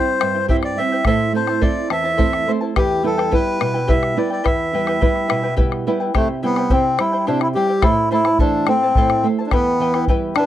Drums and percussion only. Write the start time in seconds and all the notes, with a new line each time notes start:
0.21 bombo rim
0.49 bombo rim, bombo low
0.63 bombo rim
1.05 bombo rim, bombo low
1.47 bombo rim
1.62 bombo low
1.90 bombo rim
2.19 bombo rim, bombo low
2.33 bombo rim
2.76 bombo rim, bombo low
3.19 bombo rim
3.33 bombo low
3.61 bombo rim
3.89 bombo rim, bombo low
4.03 bombo rim
4.46 bombo rim, bombo low
4.87 bombo rim
5.02 bombo low
5.16 bombo rim
5.30 bombo rim
5.58 bombo low
5.72 bombo rim
6.15 bombo rim, bombo low
6.56 bombo rim
6.70 bombo low
6.99 bombo rim
7.27 bombo rim
7.41 bombo rim
7.82 bombo rim, bombo low
8.25 bombo rim
8.39 bombo low
8.67 bombo rim
8.95 bombo rim, bombo low
9.10 bombo rim
9.51 bombo rim, bombo low
9.94 bombo rim
10.08 bombo low
10.36 bombo rim